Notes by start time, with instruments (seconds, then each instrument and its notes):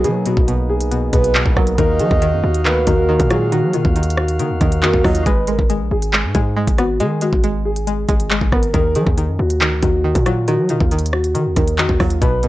Already playing: synth pluck F#3, pipe organ A#3 B3 D#4
0.04 synth pluck B2, 808-style bass F#3, grand piano G#4, closed hi-hat
0.26 synth pluck B2, grand piano F#4, closed hi-hat
0.37 808-style bass B1, kick
0.48 synth pluck B2, closed hi-hat
0.69 grand piano G#4
0.81 closed hi-hat
0.91 synth pluck B2, closed hi-hat
1.13 808-style bass B1, synth pluck B2, grand piano G#4, soft synth lead B4, kick, closed hi-hat
1.24 closed hi-hat
1.35 synth pluck B2, clap
1.46 808-style bass B1, kick
1.56 808-style bass B1, synth pluck F#3, grand piano A#4, kick, cross-stick
1.67 closed hi-hat
1.78 808-style bass D#2, synth pluck D#3, pipe organ D#3 F#4 F5, grand piano A#4, soft synth lead D#5, kick, closed hi-hat
1.99 synth pluck D#3, 808-style bass F#3, grand piano G#4, closed hi-hat
2.11 808-style bass D#2, kick
2.22 synth pluck D#3, closed hi-hat
2.33 808-style bass F#2
2.44 808-style bass D#2, grand piano F#4
2.54 closed hi-hat
2.65 808-style bass D2, synth pluck D#3, soft synth lead B4, clap
2.87 808-style bass D#2, synth pluck D#3, grand piano F#4, soft synth lead A#4, kick, closed hi-hat
3.09 synth pluck D#3
3.20 808-style bass A#2, kick, closed hi-hat
3.30 synth pluck F#3, grand piano F4, soft synth lead G#4, cross-stick, closed hi-hat
3.52 synth pluck D#3, grand piano F#4, closed hi-hat
3.63 808-style bass F#3
3.73 808-style bass A#2, synth pluck D#3, grand piano F4, closed hi-hat
3.85 808-style bass D#2, kick
3.96 synth pluck D#3, closed hi-hat
4.03 closed hi-hat
4.10 closed hi-hat
4.17 grand piano F#4, cross-stick
4.28 closed hi-hat
4.39 808-style bass D#3, synth pluck D#3, closed hi-hat
4.50 808-style bass D#2
4.61 808-style bass D#2, synth pluck D#3, grand piano A#4, kick, closed hi-hat
4.72 closed hi-hat
4.83 808-style bass F2, synth pluck D#3, grand piano F#4, soft synth lead A#4, clap
4.93 808-style bass D#2, kick
5.04 808-style bass D#2, synth pluck F#3, grand piano F4, soft synth lead D#5, kick, cross-stick, open hi-hat
5.15 closed hi-hat
5.26 808-style bass G#1, synth pluck G#3, grand piano B4, kick, closed hi-hat
5.47 synth pluck G#3, grand piano A#4, closed hi-hat
5.59 808-style bass G#1, kick
5.70 synth pluck G#3, closed hi-hat
5.80 808-style bass A#1
5.91 808-style bass G#1, grand piano G#4
6.02 closed hi-hat
6.13 synth pluck G#3, clap
6.24 808-style bass G#2
6.35 808-style bass G#2, synth pluck G#3, grand piano G#4, kick, closed hi-hat
6.56 synth pluck G#3
6.67 808-style bass G#1, kick, closed hi-hat
6.78 synth pluck B3, grand piano F#4, cross-stick, closed hi-hat
7.00 808-style bass D#3, synth pluck G#3, grand piano G#4, closed hi-hat
7.21 synth pluck G#3, grand piano F#4, closed hi-hat
7.33 808-style bass G#1, kick
7.44 synth pluck G#3, closed hi-hat
7.65 grand piano G#4
7.76 closed hi-hat
7.87 synth pluck G#3, closed hi-hat
8.09 808-style bass G#1, synth pluck G#3, grand piano G#4, kick, closed hi-hat
8.20 closed hi-hat
8.31 synth pluck G#3, clap
8.41 808-style bass G#1, kick
8.52 808-style bass G#1, synth pluck B3, grand piano A#4, kick, cross-stick
8.63 closed hi-hat
8.74 808-style bass D#2, synth pluck D#3, grand piano A#4, kick, closed hi-hat
8.95 synth pluck D#3, 808-style bass F#3, grand piano G#4, closed hi-hat
9.07 808-style bass D#2, kick
9.18 synth pluck D#3, closed hi-hat
9.28 808-style bass F#2
9.39 808-style bass D#2, grand piano F#4
9.50 closed hi-hat
9.61 808-style bass D2, synth pluck D#3, clap
9.82 808-style bass D#2, synth pluck D#3, grand piano F#4, kick, closed hi-hat
10.04 synth pluck D#3
10.15 808-style bass A#2, kick, closed hi-hat
10.26 synth pluck F#3, grand piano F4, cross-stick, closed hi-hat
10.48 synth pluck D#3, grand piano F#4, closed hi-hat
10.59 808-style bass F#3
10.69 808-style bass A#2, synth pluck D#3, grand piano F4, closed hi-hat
10.80 808-style bass D#2, kick
10.91 synth pluck D#3, closed hi-hat
10.99 closed hi-hat
11.06 closed hi-hat
11.13 grand piano F#4, cross-stick
11.24 closed hi-hat
11.35 synth pluck D#3, 808-style bass D#3, closed hi-hat
11.46 808-style bass D#2
11.56 808-style bass D#2, synth pluck D#3, grand piano A#4, kick, closed hi-hat
11.68 closed hi-hat
11.78 808-style bass F2, synth pluck D#3, grand piano F#4, clap
11.89 808-style bass D#2, kick
12.00 808-style bass D#2, synth pluck F#3, grand piano F4, kick, cross-stick, open hi-hat
12.10 closed hi-hat
12.22 808-style bass B1, synth pluck B2, grand piano B4, kick, closed hi-hat
12.43 synth pluck B2, grand piano A#4, closed hi-hat